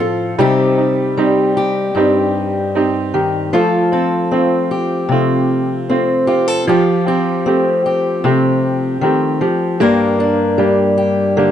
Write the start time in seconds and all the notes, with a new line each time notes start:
Already playing: A2 F3 C4 F4 A4
0.00 F4 A4
0.38 C3 G3 C4 D#4 G4
0.77 D#4
1.17 G3 C4 D#4 G4
1.57 G4
1.95 G2 C4 D#4 G4
2.75 C4 D#4 G4
3.14 D#3 G4
3.53 F3 A3 F4 A4
3.92 C4 A4
4.31 A3 C4 F4
4.71 G4
5.09 C3 A3 C4 F4
5.89 A3 C4 F4
6.27 F4 G4
6.48 A4
6.67 F3 F4 G4
7.07 C4 G4
7.46 A3 C4 G4
7.86 G4
8.24 C3 A3 C4 G4
9.01 D#3 A3 C4 G4
9.41 F3 G4
9.80 G2 A#3 D4 G4 A#4
10.19 D4
10.58 G3 A#3 D4 G4
10.98 G4
11.37 D3 A#3 D4 G4